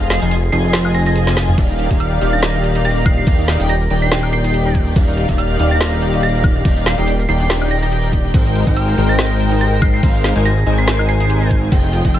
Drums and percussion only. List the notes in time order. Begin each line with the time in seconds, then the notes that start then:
0.10 snare, closed hi-hat
0.22 closed hi-hat
0.31 closed hi-hat
0.52 closed hi-hat
0.73 snare, closed hi-hat
0.85 high woodblock
0.94 closed hi-hat
1.06 closed hi-hat
1.16 closed hi-hat
1.27 snare
1.37 snare, closed hi-hat
1.48 mid tom
1.58 kick, closed hi-hat, crash
1.79 closed hi-hat
1.91 kick, closed hi-hat
2.00 closed hi-hat
2.21 closed hi-hat
2.43 snare, closed hi-hat
2.64 closed hi-hat
2.75 closed hi-hat
2.85 closed hi-hat
3.06 kick, closed hi-hat, high woodblock
3.27 kick, closed hi-hat, crash
3.48 snare, closed hi-hat
3.60 closed hi-hat
3.69 closed hi-hat
3.90 closed hi-hat
4.12 snare, closed hi-hat
4.23 high woodblock
4.33 closed hi-hat
4.44 closed hi-hat
4.54 closed hi-hat
4.75 kick, closed hi-hat
4.96 kick, closed hi-hat, crash
5.17 closed hi-hat
5.29 kick, closed hi-hat
5.38 closed hi-hat
5.60 closed hi-hat
5.81 snare, closed hi-hat
6.02 closed hi-hat
6.13 closed hi-hat
6.23 closed hi-hat
6.44 kick, closed hi-hat, high woodblock
6.65 kick, closed hi-hat, crash
6.86 snare, closed hi-hat
6.98 closed hi-hat
7.07 closed hi-hat
7.29 closed hi-hat
7.50 snare, closed hi-hat
7.62 high woodblock
7.71 closed hi-hat
7.83 closed hi-hat
7.92 closed hi-hat
8.13 kick, closed hi-hat
8.34 kick, closed hi-hat, crash
8.56 closed hi-hat
8.67 kick, closed hi-hat
8.76 closed hi-hat
8.98 closed hi-hat
9.19 snare, closed hi-hat
9.40 closed hi-hat
9.51 closed hi-hat
9.61 closed hi-hat
9.82 kick, closed hi-hat, high woodblock
10.03 kick, closed hi-hat, crash
10.24 snare, closed hi-hat
10.36 closed hi-hat
10.45 closed hi-hat
10.66 closed hi-hat
10.88 snare, closed hi-hat
10.99 high woodblock
11.09 closed hi-hat
11.20 closed hi-hat
11.30 closed hi-hat
11.51 kick, closed hi-hat
11.72 kick, closed hi-hat, crash
11.93 closed hi-hat
12.05 kick, closed hi-hat
12.14 closed hi-hat